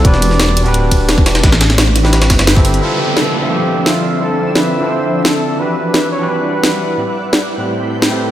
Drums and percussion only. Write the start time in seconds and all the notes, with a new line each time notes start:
0.05 kick, closed hi-hat
0.14 snare
0.22 closed hi-hat, ride
0.31 snare
0.40 snare, closed hi-hat
0.48 snare
0.57 closed hi-hat, ride
0.66 closed hi-hat
0.74 closed hi-hat
0.91 kick, closed hi-hat, ride
1.09 snare, closed hi-hat
1.18 kick, snare
1.26 snare, closed hi-hat, open hi-hat, ride
1.35 snare, closed hi-hat
1.43 kick, snare, closed hi-hat
1.52 snare, closed hi-hat
1.61 snare, closed hi-hat, ride
1.70 snare, closed hi-hat
1.78 snare, closed hi-hat
1.87 snare
1.96 snare, closed hi-hat, ride
2.05 snare
2.13 snare, closed hi-hat
2.22 snare, closed hi-hat
2.30 kick, snare, closed hi-hat, ride
2.39 snare, closed hi-hat
2.47 snare, closed hi-hat
2.56 kick, snare
2.65 closed hi-hat, open hi-hat, ride
2.74 closed hi-hat
3.17 snare
3.86 snare
4.55 snare
5.25 snare
5.94 snare
6.63 snare
7.33 snare
8.02 snare